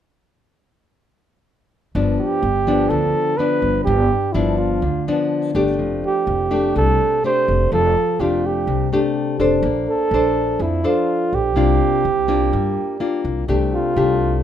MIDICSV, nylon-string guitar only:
0, 0, Header, 1, 2, 480
1, 0, Start_track
1, 0, Key_signature, -1, "major"
1, 0, Tempo, 480769
1, 1945, Time_signature, 4, 2, 24, 8
1, 14408, End_track
2, 0, Start_track
2, 0, Title_t, "Nylon-string guitar"
2, 0, Program_c, 0, 24
2, 1947, Note_on_c, 0, 43, 52
2, 1953, Note_on_c, 0, 59, 50
2, 1954, Note_on_c, 0, 53, 53
2, 1956, Note_on_c, 0, 62, 57
2, 2424, Note_off_c, 0, 53, 0
2, 2426, Note_off_c, 0, 59, 0
2, 2426, Note_off_c, 0, 62, 0
2, 2666, Note_on_c, 0, 53, 52
2, 2673, Note_on_c, 0, 59, 53
2, 2678, Note_on_c, 0, 62, 64
2, 2881, Note_off_c, 0, 43, 0
2, 2918, Note_on_c, 0, 50, 51
2, 3346, Note_off_c, 0, 53, 0
2, 3349, Note_off_c, 0, 59, 0
2, 3351, Note_off_c, 0, 62, 0
2, 3384, Note_on_c, 0, 53, 52
2, 3391, Note_on_c, 0, 59, 47
2, 3396, Note_on_c, 0, 62, 60
2, 3845, Note_off_c, 0, 50, 0
2, 3871, Note_on_c, 0, 43, 55
2, 4028, Note_off_c, 0, 53, 0
2, 4031, Note_off_c, 0, 59, 0
2, 4034, Note_off_c, 0, 62, 0
2, 4338, Note_on_c, 0, 53, 55
2, 4342, Note_on_c, 0, 59, 54
2, 4345, Note_on_c, 0, 62, 68
2, 4802, Note_off_c, 0, 43, 0
2, 4816, Note_off_c, 0, 53, 0
2, 4818, Note_off_c, 0, 59, 0
2, 4819, Note_off_c, 0, 62, 0
2, 4827, Note_on_c, 0, 50, 53
2, 5072, Note_on_c, 0, 53, 63
2, 5075, Note_on_c, 0, 59, 59
2, 5079, Note_on_c, 0, 62, 63
2, 5508, Note_off_c, 0, 53, 0
2, 5508, Note_off_c, 0, 59, 0
2, 5511, Note_off_c, 0, 62, 0
2, 5539, Note_on_c, 0, 57, 58
2, 5544, Note_on_c, 0, 62, 61
2, 5550, Note_on_c, 0, 67, 70
2, 5759, Note_off_c, 0, 50, 0
2, 5780, Note_on_c, 0, 53, 53
2, 6461, Note_off_c, 0, 57, 0
2, 6462, Note_off_c, 0, 62, 0
2, 6466, Note_off_c, 0, 67, 0
2, 6497, Note_on_c, 0, 57, 57
2, 6502, Note_on_c, 0, 62, 56
2, 6506, Note_on_c, 0, 67, 59
2, 6716, Note_off_c, 0, 53, 0
2, 6746, Note_on_c, 0, 48, 54
2, 7180, Note_off_c, 0, 57, 0
2, 7182, Note_off_c, 0, 62, 0
2, 7184, Note_off_c, 0, 67, 0
2, 7230, Note_on_c, 0, 57, 57
2, 7240, Note_on_c, 0, 62, 55
2, 7246, Note_on_c, 0, 67, 55
2, 7679, Note_off_c, 0, 48, 0
2, 7719, Note_on_c, 0, 53, 53
2, 7871, Note_off_c, 0, 57, 0
2, 7876, Note_off_c, 0, 62, 0
2, 7878, Note_off_c, 0, 67, 0
2, 8189, Note_on_c, 0, 57, 51
2, 8193, Note_on_c, 0, 62, 58
2, 8199, Note_on_c, 0, 67, 63
2, 8646, Note_off_c, 0, 53, 0
2, 8670, Note_on_c, 0, 48, 50
2, 8867, Note_off_c, 0, 57, 0
2, 8869, Note_off_c, 0, 62, 0
2, 8870, Note_off_c, 0, 67, 0
2, 8912, Note_on_c, 0, 57, 57
2, 8918, Note_on_c, 0, 62, 58
2, 8921, Note_on_c, 0, 67, 64
2, 9349, Note_off_c, 0, 57, 0
2, 9352, Note_off_c, 0, 62, 0
2, 9352, Note_off_c, 0, 67, 0
2, 9383, Note_on_c, 0, 62, 58
2, 9388, Note_on_c, 0, 69, 61
2, 9395, Note_on_c, 0, 72, 67
2, 9603, Note_off_c, 0, 48, 0
2, 9637, Note_on_c, 0, 58, 52
2, 10110, Note_off_c, 0, 62, 0
2, 10111, Note_off_c, 0, 69, 0
2, 10118, Note_off_c, 0, 72, 0
2, 10121, Note_on_c, 0, 62, 53
2, 10124, Note_on_c, 0, 69, 55
2, 10130, Note_on_c, 0, 72, 59
2, 10566, Note_off_c, 0, 58, 0
2, 10585, Note_on_c, 0, 53, 52
2, 10795, Note_off_c, 0, 62, 0
2, 10795, Note_off_c, 0, 69, 0
2, 10799, Note_off_c, 0, 72, 0
2, 10825, Note_on_c, 0, 62, 60
2, 10830, Note_on_c, 0, 69, 59
2, 10834, Note_on_c, 0, 72, 60
2, 11507, Note_off_c, 0, 62, 0
2, 11508, Note_off_c, 0, 69, 0
2, 11511, Note_off_c, 0, 72, 0
2, 11521, Note_off_c, 0, 53, 0
2, 11540, Note_on_c, 0, 58, 55
2, 11547, Note_on_c, 0, 48, 53
2, 11548, Note_on_c, 0, 62, 58
2, 11553, Note_on_c, 0, 65, 55
2, 12020, Note_off_c, 0, 58, 0
2, 12022, Note_off_c, 0, 62, 0
2, 12026, Note_off_c, 0, 65, 0
2, 12262, Note_on_c, 0, 58, 52
2, 12266, Note_on_c, 0, 62, 57
2, 12269, Note_on_c, 0, 65, 67
2, 12483, Note_off_c, 0, 48, 0
2, 12506, Note_on_c, 0, 55, 51
2, 12946, Note_off_c, 0, 58, 0
2, 12948, Note_off_c, 0, 65, 0
2, 12949, Note_off_c, 0, 62, 0
2, 12981, Note_on_c, 0, 58, 53
2, 12986, Note_on_c, 0, 62, 52
2, 12988, Note_on_c, 0, 65, 55
2, 13426, Note_off_c, 0, 58, 0
2, 13427, Note_off_c, 0, 62, 0
2, 13429, Note_off_c, 0, 65, 0
2, 13443, Note_off_c, 0, 55, 0
2, 13462, Note_on_c, 0, 57, 54
2, 13463, Note_on_c, 0, 48, 57
2, 13468, Note_on_c, 0, 62, 55
2, 13475, Note_on_c, 0, 67, 59
2, 13905, Note_off_c, 0, 57, 0
2, 13909, Note_off_c, 0, 62, 0
2, 13912, Note_off_c, 0, 67, 0
2, 13943, Note_on_c, 0, 57, 60
2, 13951, Note_on_c, 0, 62, 57
2, 13953, Note_on_c, 0, 67, 66
2, 14401, Note_off_c, 0, 48, 0
2, 14408, Note_off_c, 0, 57, 0
2, 14408, Note_off_c, 0, 62, 0
2, 14408, Note_off_c, 0, 67, 0
2, 14408, End_track
0, 0, End_of_file